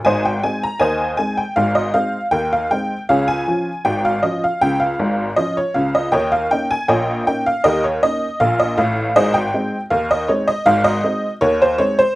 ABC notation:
X:1
M:2/4
L:1/16
Q:1/4=79
K:Ab
V:1 name="Honky-tonk piano"
[cea] g a b [cea]2 a g | f e f2 g f g2 | [Adf] a3 g f e f | g f3 e d f e |
[deg] f g a [deg]2 g f | [GBe] d e2 f e f2 | [Ace] g3 f e d e | f e3 d c d c |]
V:2 name="Honky-tonk piano" clef=bass
[A,,,A,,]2 [A,CE]2 [E,,E,]2 [A,CE]2 | [A,,,A,,]2 [A,CE]2 [E,,E,]2 [A,CE]2 | [D,,D,]2 [F,DF]2 [A,,,A,,]2 [F,DF]2 | [D,,D,]2 [A,,,A,,]2 [F,DF]2 [D,,D,]2 |
[E,,E,]2 [B,DE]2 [B,,,B,,]2 [B,DE]2 | [E,,E,]2 [B,DE]2 [B,,,B,,]2 [=A,,,=A,,]2 | [A,,,A,,]2 [A,CE]2 [E,,E,]2 [A,CE]2 | [A,,,A,,]2 [A,CE]2 [E,,E,]2 [A,CE]2 |]